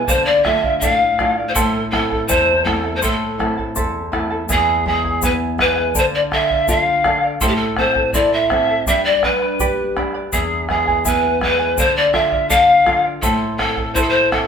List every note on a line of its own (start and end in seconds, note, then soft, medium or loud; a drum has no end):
0.07 0.80 D3 medium
0.07 0.44 A4 medium
0.07 0.24 C5 medium
0.07 0.45 D5 medium
0.07 0.45 F5 medium
0.07 bombo low medium
0.07 shaker medium
0.25 0.43 D5 medium
0.43 1.04 A3 soft
0.43 1.04 D4 soft
0.43 1.04 F4 medium
0.43 0.64 A4 medium
0.43 0.64 D5 medium
0.43 0.78 E5 loud
0.43 0.63 F5 medium
0.43 bombo rim medium
0.43 bombo low medium
0.64 0.81 D5 soft
0.64 0.82 F5 medium
0.64 bombo low medium
0.79 1.54 A2 medium
0.79 1.18 A4 medium
0.79 1.19 D5 medium
0.79 1.32 F5 loud
0.79 1.19 F5 medium
0.79 bombo low medium
0.79 shaker medium
1.19 1.49 A3 medium
1.19 1.49 D4 soft
1.19 1.49 F4 medium
1.19 1.37 A4 medium
1.19 1.37 D5 medium
1.19 1.36 F5 medium
1.19 bombo rim medium
1.19 bombo low medium
1.38 1.55 D5 soft
1.38 1.55 F5 medium
1.48 1.55 C5 medium
1.54 2.27 A2 medium
1.54 1.91 E4 medium
1.54 1.90 A4 medium
1.54 1.92 A4 medium
1.54 1.92 C5 medium
1.54 1.91 E5 medium
1.54 1.93 A5 medium
1.54 bombo low medium
1.54 shaker loud
1.91 2.51 A3 soft
1.91 2.51 C4 soft
1.91 2.11 E4 medium
1.91 2.51 E4 medium
1.91 2.26 A4 medium
1.91 2.11 A4 medium
1.91 2.11 E5 medium
1.91 2.09 A5 medium
1.91 bombo rim medium
1.91 bombo low medium
2.11 2.28 E4 soft
2.11 2.28 A4 medium
2.11 2.28 A5 medium
2.11 bombo low medium
2.27 3.00 E2 medium
2.27 2.65 E4 medium
2.27 2.65 A4 medium
2.27 2.66 C5 medium
2.27 2.64 E5 medium
2.27 2.66 A5 medium
2.27 bombo low medium
2.27 shaker loud
2.64 2.95 A3 soft
2.64 2.95 C4 soft
2.64 2.95 E4 medium
2.64 2.84 E4 medium
2.64 2.95 A4 medium
2.64 2.84 A4 medium
2.64 2.84 E5 medium
2.64 2.83 A5 medium
2.64 bombo rim medium
2.64 bombo low soft
2.84 3.01 E4 soft
2.84 3.01 A4 soft
2.84 3.02 A5 medium
2.96 3.04 C5 medium
3.02 3.74 A2 medium
3.02 3.38 E4 medium
3.02 3.76 A4 medium
3.02 3.39 A4 medium
3.02 3.39 C5 medium
3.02 3.37 E5 medium
3.02 3.39 A5 medium
3.02 bombo low medium
3.02 shaker medium
3.38 3.98 A3 soft
3.38 3.98 C4 soft
3.38 3.57 E4 medium
3.38 3.99 E4 medium
3.38 3.57 A4 medium
3.38 3.57 E5 medium
3.38 3.56 A5 medium
3.38 bombo rim soft
3.38 bombo low soft
3.57 3.75 E4 soft
3.57 3.76 A4 soft
3.57 3.76 A5 soft
3.57 bombo low soft
3.76 4.47 E2 medium
3.76 4.11 E4 medium
3.76 4.11 A4 medium
3.76 4.12 C5 medium
3.76 4.11 E5 medium
3.76 4.12 A5 medium
3.76 bombo low medium
3.76 shaker medium
4.12 4.41 A3 medium
4.12 4.42 C4 soft
4.12 4.31 E4 medium
4.12 4.42 E4 medium
4.12 4.30 A4 medium
4.12 4.31 E5 medium
4.12 4.29 A5 medium
4.12 bombo rim medium
4.12 bombo low soft
4.30 4.49 E4 soft
4.30 4.49 A4 medium
4.30 4.49 A5 medium
4.49 5.91 E2 medium
4.49 4.85 E4 medium
4.49 4.86 G#4 medium
4.49 4.85 G#4 medium
4.49 4.86 B4 medium
4.49 4.85 E5 medium
4.49 4.86 G#5 medium
4.49 bombo low medium
4.49 shaker loud
4.86 5.21 G#3 medium
4.86 5.04 E4 medium
4.86 5.21 G#4 medium
4.86 5.04 B4 medium
4.86 5.04 E5 medium
4.86 5.03 G#5 medium
4.86 bombo low soft
5.04 5.22 E4 soft
5.04 5.22 B4 soft
5.04 5.22 G#5 soft
5.04 bombo low medium
5.22 5.58 B3 medium
5.22 5.58 E4 medium
5.22 5.59 G#4 medium
5.22 5.58 B4 medium
5.22 5.32 B4 medium
5.22 5.57 E5 medium
5.22 5.59 G#5 medium
5.22 bombo low medium
5.22 shaker medium
5.58 5.94 G#3 medium
5.58 5.77 E4 medium
5.58 5.76 B4 medium
5.58 5.94 B4 medium
5.58 5.77 E5 medium
5.58 5.75 G#5 medium
5.58 bombo rim medium
5.58 bombo low medium
5.76 5.95 E4 soft
5.76 5.95 B4 soft
5.76 5.95 G#5 medium
5.95 7.37 D3 medium
5.95 6.30 A4 medium
5.95 6.04 C5 medium
5.95 6.31 D5 medium
5.95 6.32 F5 medium
5.95 bombo low medium
5.95 shaker loud
6.15 6.21 D5 medium
6.31 6.50 A4 medium
6.31 6.67 A4 medium
6.31 6.50 D5 medium
6.31 6.71 E5 loud
6.31 6.49 F5 medium
6.31 bombo rim medium
6.31 bombo low medium
6.50 6.67 D5 soft
6.50 6.68 F5 soft
6.50 bombo low medium
6.68 7.04 F4 medium
6.68 7.04 A4 medium
6.68 7.04 D5 medium
6.68 7.05 F5 medium
6.68 7.24 F5 loud
6.68 bombo low medium
6.68 shaker medium
7.04 7.23 A4 medium
7.04 7.40 A4 medium
7.04 7.23 D5 medium
7.04 7.22 F5 medium
7.04 bombo rim medium
7.04 bombo low medium
7.23 7.42 D5 soft
7.23 7.41 F5 medium
7.41 8.83 A2 medium
7.41 7.77 E4 medium
7.41 7.49 A4 medium
7.41 7.78 A4 medium
7.41 7.78 C5 medium
7.41 7.77 E5 medium
7.41 7.78 A5 medium
7.41 bombo low medium
7.41 shaker medium
7.48 7.57 G4 medium
7.55 7.77 A4 loud
7.76 8.13 C4 medium
7.76 7.96 E4 medium
7.76 7.96 A4 medium
7.76 8.15 C5 medium
7.76 7.96 E5 medium
7.76 7.95 A5 medium
7.76 bombo rim medium
7.76 bombo low medium
7.95 8.13 E4 soft
7.95 8.14 A4 medium
7.95 8.14 A5 medium
7.95 bombo low medium
8.13 8.50 E4 medium
8.13 8.50 A4 medium
8.13 8.51 C5 medium
8.13 8.32 D5 medium
8.13 8.49 E5 medium
8.13 8.51 A5 medium
8.13 bombo low medium
8.13 shaker medium
8.33 8.83 E5 loud
8.50 8.86 C4 medium
8.50 8.69 E4 medium
8.50 8.68 A4 medium
8.50 8.69 E5 medium
8.50 8.67 A5 medium
8.50 bombo rim medium
8.50 bombo low medium
8.69 8.87 E4 soft
8.69 8.87 A4 medium
8.69 8.87 A5 soft
8.86 10.29 G2 medium
8.86 9.24 G4 medium
8.86 9.23 B4 medium
8.86 9.23 D5 medium
8.86 9.04 E5 medium
8.86 9.23 G5 medium
8.86 9.24 B5 medium
8.86 bombo low medium
8.86 shaker medium
9.05 9.22 D5 medium
9.23 9.59 D4 medium
9.23 9.92 B4 medium
9.23 9.42 B4 medium
9.23 9.42 D5 medium
9.23 9.42 G5 medium
9.23 9.41 B5 medium
9.23 bombo rim medium
9.23 bombo low medium
9.42 9.59 B4 soft
9.42 9.59 D5 soft
9.42 9.60 B5 medium
9.60 9.96 G4 medium
9.60 9.95 G4 medium
9.60 9.96 B4 medium
9.60 9.96 D5 medium
9.60 9.95 G5 medium
9.60 9.97 B5 medium
9.60 bombo low medium
9.60 shaker medium
9.96 10.31 D4 medium
9.96 10.15 B4 medium
9.96 10.14 D5 medium
9.96 10.14 G5 medium
9.96 10.13 B5 medium
9.96 bombo rim medium
9.96 bombo low soft
10.14 10.32 B4 soft
10.14 10.33 D5 soft
10.14 10.32 B5 medium
10.32 11.74 E2 medium
10.32 10.68 E4 medium
10.32 10.69 G#4 medium
10.32 10.66 G#4 medium
10.32 10.68 B4 medium
10.32 10.67 E5 medium
10.32 10.69 G#5 medium
10.32 bombo low medium
10.32 shaker medium
10.68 11.05 G#3 medium
10.68 10.87 E4 medium
10.68 11.08 G#4 medium
10.68 10.87 B4 medium
10.68 10.87 E5 medium
10.68 10.86 G#5 medium
10.68 bombo rim soft
10.68 bombo low soft
10.87 11.04 E4 soft
10.87 11.04 B4 medium
10.87 11.04 G#5 medium
10.87 bombo low medium
11.05 11.40 B3 medium
11.05 11.40 E4 medium
11.05 11.41 G#4 medium
11.05 11.40 B4 medium
11.05 11.42 B4 medium
11.05 11.39 E5 medium
11.05 11.40 G#5 medium
11.05 bombo low medium
11.05 shaker medium
11.40 11.76 G#3 medium
11.40 11.59 E4 medium
11.40 11.58 B4 medium
11.40 11.80 B4 medium
11.40 11.59 E5 medium
11.40 11.58 G#5 medium
11.40 bombo rim medium
11.40 bombo low soft
11.59 11.77 E4 soft
11.59 11.78 B4 soft
11.59 11.77 G#5 soft
11.78 13.18 D3 medium
11.78 12.12 A4 medium
11.78 11.96 C5 loud
11.78 12.13 D5 medium
11.78 12.13 F5 medium
11.78 bombo low medium
11.78 shaker loud
11.96 12.14 D5 medium
12.13 12.49 F4 medium
12.13 12.32 A4 medium
12.13 12.31 D5 medium
12.13 12.51 E5 loud
12.13 12.30 F5 medium
12.13 bombo rim medium
12.13 bombo low medium
12.31 12.49 D5 soft
12.31 12.49 F5 medium
12.31 bombo low medium
12.49 12.84 A4 medium
12.49 12.85 A4 medium
12.49 12.86 D5 medium
12.49 13.04 F5 loud
12.49 12.86 F5 medium
12.49 bombo low medium
12.49 shaker medium
12.86 13.21 F4 medium
12.86 13.04 A4 medium
12.86 13.04 D5 medium
12.86 13.03 F5 medium
12.86 bombo rim medium
12.86 bombo low soft
13.04 13.23 D5 soft
13.04 13.22 F5 medium
13.22 14.47 A2 medium
13.22 13.59 E4 medium
13.22 13.56 A4 medium
13.22 13.59 A4 medium
13.22 13.59 C5 medium
13.22 13.58 E5 medium
13.22 13.59 A5 medium
13.22 bombo low medium
13.22 shaker medium
13.58 13.94 C4 medium
13.58 13.77 E4 medium
13.58 13.92 A4 medium
13.58 13.77 A4 medium
13.58 13.77 E5 medium
13.58 13.77 A5 medium
13.58 bombo rim medium
13.58 bombo low medium
13.77 13.95 E4 soft
13.77 13.95 A4 medium
13.77 13.95 A5 medium
13.77 bombo low medium
13.94 14.30 E4 medium
13.94 14.31 E4 medium
13.94 14.31 A4 medium
13.94 14.03 C5 medium
13.94 14.32 C5 medium
13.94 14.30 E5 medium
13.94 14.32 A5 medium
13.94 bombo low medium
13.94 shaker medium
14.02 14.10 A4 medium
14.09 14.33 C5 medium
14.32 14.47 C4 medium
14.32 14.47 E4 medium
14.32 14.47 A4 medium
14.32 14.47 E5 medium
14.32 14.47 A5 medium
14.32 bombo rim medium
14.32 bombo low medium